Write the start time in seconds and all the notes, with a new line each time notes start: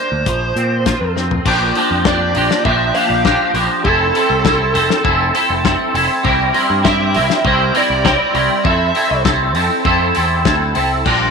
Already playing: A#3 D4 G4 C5
0.12 D2
0.26 A#1 F3, kick, closed hi-hat
0.56 A#2 C4, closed hi-hat
0.86 F4, kick, snare, closed hi-hat
1.01 F2
1.16 C4, snare
1.31 floor tom
1.45 A#1 F3 A#3 D4 G4, kick, crash
1.75 F3 A#3 D4 G4, open hi-hat
1.91 F2
2.05 F3 A#3 D4 G4 D5, kick, snare
2.35 A#1 F3 A#3 D4 G4, open hi-hat
2.51 snare
2.64 A#1 F3 A#3 D4 G4 E5, kick
2.94 F3 A#3 D4 G4 F5, open hi-hat
3.10 A#1
3.24 F3 A#3 D4 G4, kick, snare
3.54 A#1 F3 A#3 D4 G4, open hi-hat
3.84 F1 C4 E4 A4, kick
4.14 C4 E4 A4, open hi-hat
4.30 C2
4.44 C4 E4 A4, kick, snare
4.74 F1 C4 E4 A4, open hi-hat
4.90 snare
5.03 F1 C4 E4 A4, kick
5.34 C4 E4 A4, open hi-hat
5.50 F1
5.64 C4 E4 A4, kick, snare
5.94 F1 C4 E4 A4, open hi-hat
6.23 C2 G3 C4 E4 A#4, kick
6.53 G3 C4 E4 A#4, open hi-hat
6.70 G2
6.83 G3 C4 E4 A#4 E5, kick, snare
7.14 C2 G3 C4 E4 A#4, open hi-hat
7.30 snare
7.44 C2 G3 C4 E4 A#4 C5, kick
7.74 G3 C4 E4 A#4 D5, open hi-hat
7.90 C2
8.04 G3 C4 E4 A#4 D5, kick, snare
8.33 C2 G3 C4 E4 A#4, open hi-hat
8.64 F2 C4 E4 A4 E5, kick
8.95 C4 E4 A4, open hi-hat
9.11 C2
9.24 C4 E4 A4, kick, snare
9.55 F2 C4 E4 A4, open hi-hat
9.85 F2 C4 E4 A4, kick
10.15 E2 C4 E4 A4, open hi-hat
10.45 D2 C4 E4 A4, kick, snare
10.75 C2 C4 E4 A4, open hi-hat
11.05 A#1 G3 D4 F4 A#4, kick, crash